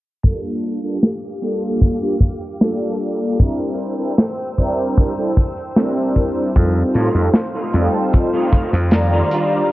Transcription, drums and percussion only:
0.23 kick loud
0.23 closed hi-hat medium
0.63 closed hi-hat medium
1.03 snare loud
1.03 closed hi-hat medium
1.42 closed hi-hat medium
1.82 kick loud
1.82 closed hi-hat medium
2.21 kick loud
2.21 closed hi-hat medium
2.41 closed hi-hat soft
2.61 snare loud
2.61 closed hi-hat medium
3.00 closed hi-hat medium
3.39 kick loud
3.39 closed hi-hat medium
3.79 closed hi-hat medium
4.18 snare loud
4.18 closed hi-hat medium
4.58 kick medium
4.58 closed hi-hat medium
4.97 kick loud
4.97 closed hi-hat medium
5.37 kick loud
5.37 closed hi-hat medium
5.57 closed hi-hat medium
5.76 snare loud
5.76 closed hi-hat medium
6.16 kick medium
6.16 closed hi-hat medium
6.56 kick loud
6.56 closed hi-hat medium
6.94 closed hi-hat medium
7.34 snare loud
7.34 closed hi-hat medium
7.74 closed hi-hat medium
8.13 kick loud
8.13 closed hi-hat medium
8.53 kick loud
8.53 closed hi-hat medium
8.74 closed hi-hat soft
8.91 snare loud
8.91 closed hi-hat medium
9.31 closed hi-hat medium

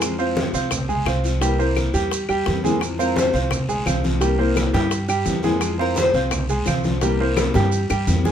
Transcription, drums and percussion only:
0.02 high bongo medium
0.02 high conga soft
0.02 long guiro medium
0.02 claves medium
0.02 maracas medium
0.19 high conga soft
0.19 maracas soft
0.36 high bongo medium
0.36 high conga medium
0.36 short guiro medium
0.36 maracas soft
0.54 high conga soft
0.54 short guiro medium
0.54 maracas medium
0.71 high bongo medium
0.71 high conga soft
0.71 low conga medium
0.71 long guiro medium
0.71 claves medium
0.71 maracas medium
0.89 high conga soft
0.89 low conga medium
0.89 maracas soft
1.06 high bongo medium
1.06 low bongo medium
1.06 high conga soft
1.06 short guiro medium
1.06 claves medium
1.06 maracas soft
1.24 short guiro medium
1.24 maracas medium
1.41 high bongo medium
1.41 high conga soft
1.41 long guiro medium
1.41 maracas medium
1.59 high bongo soft
1.59 high conga soft
1.59 maracas soft
1.76 high bongo medium
1.76 high conga medium
1.76 short guiro medium
1.76 claves medium
1.76 maracas soft
1.94 high bongo soft
1.94 high conga soft
1.94 short guiro medium
1.94 maracas medium
2.11 high bongo medium
2.11 high conga soft
2.11 long guiro medium
2.11 maracas medium
2.29 high conga soft
2.29 claves medium
2.29 maracas soft
2.46 high bongo medium
2.46 low bongo medium
2.46 high conga medium
2.46 short guiro medium
2.46 maracas soft
2.63 high bongo soft
2.63 high conga medium
2.63 short guiro medium
2.63 maracas medium
2.81 high bongo medium
2.81 high conga soft
2.81 long guiro medium
2.81 claves medium
2.81 maracas medium
2.98 high bongo soft
2.98 high conga soft
2.98 maracas medium
3.16 high bongo medium
3.16 high conga medium
3.16 short guiro medium
3.16 maracas medium
3.33 high conga soft
3.33 short guiro medium
3.33 maracas soft
3.51 high bongo medium
3.51 high conga soft
3.51 low conga medium
3.51 long guiro medium
3.51 claves medium
3.51 maracas medium
3.69 high bongo soft
3.69 high conga soft
3.69 low conga medium
3.69 maracas medium
3.86 high bongo soft
3.86 low bongo medium
3.86 high conga medium
3.86 short guiro medium
3.86 claves medium
3.86 maracas medium
4.04 high bongo soft
4.04 high conga medium
4.04 short guiro medium
4.04 maracas soft
4.21 high bongo medium
4.21 high conga soft
4.21 long guiro medium
4.21 maracas medium
4.39 high bongo soft
4.39 high conga soft
4.56 high bongo medium
4.56 high conga medium
4.56 short guiro medium
4.56 claves medium
4.56 maracas medium
4.74 high conga medium
4.74 short guiro medium
4.74 maracas soft
4.91 high bongo medium
4.91 high conga soft
4.91 long guiro medium
4.91 maracas medium
5.08 high bongo soft
5.08 high conga soft
5.08 claves medium
5.08 maracas medium
5.26 high bongo soft
5.26 low bongo medium
5.26 high conga medium
5.26 short guiro medium
5.26 maracas medium
5.43 high bongo soft
5.43 high conga medium
5.43 short guiro medium
5.43 maracas soft
5.61 high bongo medium
5.61 high conga soft
5.61 long guiro medium
5.61 claves medium
5.61 maracas medium
5.78 high bongo soft
5.78 high conga soft
5.96 high bongo medium
5.96 high conga medium
5.96 short guiro medium
5.96 maracas medium
6.14 high conga soft
6.14 short guiro medium
6.14 maracas soft
6.31 high bongo medium
6.31 high conga soft
6.31 low conga medium
6.31 long guiro medium
6.31 claves medium
6.31 maracas medium
6.49 high bongo soft
6.49 high conga soft
6.49 maracas medium
6.66 high bongo soft
6.66 low bongo medium
6.66 high conga medium
6.66 short guiro medium
6.66 claves medium
6.66 maracas medium
6.83 high bongo soft
6.83 high conga medium
6.83 short guiro medium
6.83 maracas soft
7.01 high bongo medium
7.01 high conga soft
7.01 long guiro medium
7.01 maracas medium
7.19 high bongo soft
7.19 high conga soft
7.37 high bongo medium
7.37 high conga loud
7.37 short guiro medium
7.37 claves medium
7.37 maracas medium
7.54 high bongo medium
7.54 high conga medium
7.54 short guiro medium
7.54 maracas soft
7.72 high conga soft
7.72 long guiro medium
7.72 maracas medium
7.90 high bongo medium
7.90 high conga soft
7.90 claves medium
7.90 maracas medium
8.07 low bongo medium
8.07 high conga medium
8.07 short guiro medium
8.07 maracas medium
8.24 low bongo medium
8.24 high conga medium
8.24 short guiro medium
8.24 maracas soft

